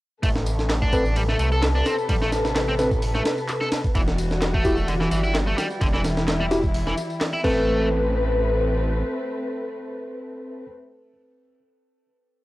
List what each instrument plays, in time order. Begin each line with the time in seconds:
0.23 detuned saw bass A1, string section C3 A4 B4, distorted electric guitar A3, kick, ride, tambourine
0.36 snare
0.46 ride, tambourine
0.59 snare, tambourine
0.70 snare, clap, ride, tambourine
0.82 distorted electric guitar D4, kick
0.93 tine electric piano C4 A4 B4, kick, ride, tambourine
1.05 tambourine
1.16 distorted electric guitar G3, ride, tambourine
1.29 distorted electric guitar A3, snare
1.39 detuned saw bass C2, distorted electric guitar A3, ride, tambourine
1.52 distorted electric guitar A4, tambourine
1.62 snare, clap, ride, tambourine
1.75 distorted electric guitar D4
1.86 distorted electric guitar C4, snare, ride, tambourine
1.98 tambourine
2.09 detuned saw bass A1, distorted electric guitar G3, kick, ride, tambourine
2.22 distorted electric guitar A3, snare
2.32 snare, ride, tambourine
2.45 snare, tambourine
2.56 snare, clap, ride, tambourine
2.68 distorted electric guitar C4
2.79 tine electric piano C4 A4 B4, snare, ride, tambourine
2.91 kick, tambourine
3.02 open hi-hat, tambourine
3.15 distorted electric guitar A3, snare
3.25 snare, ride, tambourine
3.38 tambourine
3.48 clap, ride, tambourine
3.61 distorted electric guitar A4, snare
3.72 snare, ride, tambourine
3.84 kick, tambourine
3.95 detuned saw bass E1, distorted electric guitar E3, string section E3 G3 F#4, kick, ride, tambourine
4.08 snare
4.18 ride, tambourine
4.31 snare, tambourine
4.41 snare, clap, ride, tambourine
4.54 distorted electric guitar A3, kick
4.65 tine electric piano E4 F#4 G4, kick, ride, tambourine
4.77 tambourine
4.88 distorted electric guitar D3, ride, tambourine
5.01 distorted electric guitar E3, snare
5.11 detuned saw bass G1, distorted electric guitar E3, ride, tambourine
5.24 distorted electric guitar E4, tambourine
5.35 snare, clap, ride, tambourine
5.47 distorted electric guitar A3
5.58 distorted electric guitar G3, snare, ride, tambourine
5.70 tambourine
5.81 detuned saw bass E1, distorted electric guitar D3, string section E4, kick, ride, tambourine
5.93 distorted electric guitar E3, snare
6.04 snare, ride, tambourine
6.17 snare, tambourine
6.28 snare, clap, ride, tambourine
6.40 distorted electric guitar G3
6.51 tine electric piano E4 F#4 G4, snare, ride, tambourine
6.63 kick, tambourine
6.74 open hi-hat, tambourine
6.87 distorted electric guitar E3, snare
6.97 ride, tambourine
7.10 tambourine
7.21 snare, clap, ride, tambourine
7.33 distorted electric guitar E4
7.44 detuned saw bass A1, string section A3 C4 B4, distorted electric guitar A3, tine electric piano C4 A4 B4, kick, crash